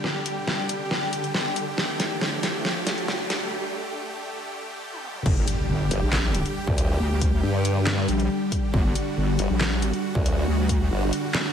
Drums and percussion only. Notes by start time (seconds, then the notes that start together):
0.04 snare
0.26 closed hi-hat
0.48 snare
0.69 closed hi-hat
0.91 snare
1.13 closed hi-hat
1.24 closed hi-hat
1.34 snare
1.56 closed hi-hat
1.78 snare
2.00 snare, closed hi-hat
2.21 snare
2.43 snare, closed hi-hat
2.65 snare
2.87 snare, closed hi-hat
2.98 closed hi-hat
3.08 snare
3.30 snare, closed hi-hat
4.93 high tom
5.04 mid tom
5.15 mid tom
5.26 kick, crash
5.48 closed hi-hat
5.91 closed hi-hat
6.13 snare, clap
6.35 closed hi-hat
6.46 closed hi-hat
6.67 kick
6.78 closed hi-hat
7.21 kick, closed hi-hat
7.65 closed hi-hat
7.87 snare, clap
8.08 closed hi-hat
8.20 closed hi-hat
8.52 kick, closed hi-hat
8.74 kick
8.95 closed hi-hat
9.39 closed hi-hat
9.61 snare, clap
9.82 closed hi-hat
9.93 closed hi-hat
10.15 kick
10.26 closed hi-hat
10.69 kick, closed hi-hat
11.13 closed hi-hat
11.35 snare, clap